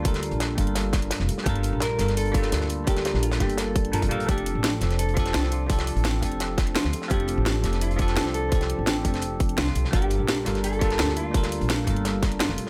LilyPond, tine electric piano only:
\new Staff \with { instrumentName = "Tine electric piano" } { \time 4/4 \key g \dorian \tempo 4 = 170 <g d' f' a' bes'>4. <g d' f' a' bes'>2~ <g d' f' a' bes'>8 | <g d' f' a' bes'>4. <g d' f' a' bes'>4 <g bes d' f' a'>4. | <g d' f' a' bes'>4. <g bes d' f' a'>4. <g d' f' a' bes'>8 <g d' f' a' bes'>8 | <f c' d' g' a'>4. <f c' d' g' a'>4 <f c' d' g' a'>4. |
<f c' d' g' a'>4. <f c' d' g' a'>2~ <f c' d' g' a'>8 | <f c' d' g' a'>4. <f c' d' g' a'>4 <f c' d' g' a'>4. | <f c' d' g' a'>4. <f c' d' g' a'>2~ <f c' d' g' a'>8 | <g d' f' a' bes'>4. <g d' f' a' bes'>4 <g bes d' f' a'>4. |
<g d' f' a' bes'>4. <g d' f' a' bes'>2~ <g d' f' a' bes'>8 | }